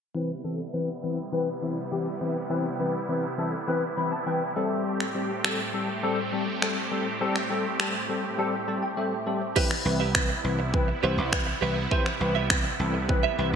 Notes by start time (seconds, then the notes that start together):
0.15 C3 E3 G3 B3 C4 E4 B4
0.44 E3 C4 A4
0.73 E3 C4 B4
1.03 E3 C4 B4
1.32 E3 C4 B4
1.62 E3 C4 E4
1.91 E3 C4 G4
2.21 E3 C4 B4
2.50 E3 C4 B4
2.79 E3 C4 B4
3.09 E3 C4 B4
3.38 E3 C4 A4
3.68 E3 C4 B4
3.97 E3 C4 B4 B5
4.12 A5
4.26 E3 C4 B4 G5
4.56 A2 G3 A3 C4 G4 A4 E5
5.00 finger snap
5.15 G3 C4 G4
5.44 G3 C4 A4, finger snap
5.74 G3 C4 A4
6.03 G3 C4 A4
6.32 G3 C4 A4
6.62 G3 C4 A4, finger snap
6.91 G3 C4 A4
7.21 G3 C4 A4
7.36 finger snap
7.50 G3 C4 A4
7.79 G3 C4 A4, finger snap
8.09 G3 C4 A4
8.38 G3 C4 A4
8.68 G3 C4 A4 A5
8.82 G5
8.97 G3 C4 A4 E5
9.26 G3 C4 A4
9.56 C3 E3 G3 B3 C4 E4 G4 B4 E5, kick, crash
9.71 finger snap, muted clean electric guitar stroke
9.85 C2 E3 C4 B4, muted clean electric guitar stroke
10.00 G4 B4 E5
10.15 E3 C4 B4, finger snap, kick
10.29 muted clean electric guitar stroke
10.44 C2 E3 C4 B4
10.59 muted clean electric guitar stroke
10.73 E3 C4 B4, kick
10.88 muted clean electric guitar stroke
11.03 C2 E3 C4 G4 B4 C5 E5
11.17 C2, muted clean electric guitar stroke
11.32 E3 C4 B4, finger snap, muted clean electric guitar stroke, kick
11.47 muted clean electric guitar stroke
11.61 C2 E3 C4 G4 B4 E5
11.76 muted clean electric guitar stroke
11.91 E3 C4 G4 B4 C5 E5, kick
12.06 finger snap, muted clean electric guitar stroke
12.20 C2 E3 C4 B4, muted clean electric guitar stroke
12.35 G4 B4 E5
12.50 E3 C4 B4, finger snap, muted clean electric guitar stroke, kick
12.64 muted clean electric guitar stroke
12.79 C2 E3 C4 A4
12.94 muted clean electric guitar stroke
13.09 E3 C4 B4, muted clean electric guitar stroke, kick
13.23 G4 B4 E5
13.38 C2 E3 C4 G4 B4 E5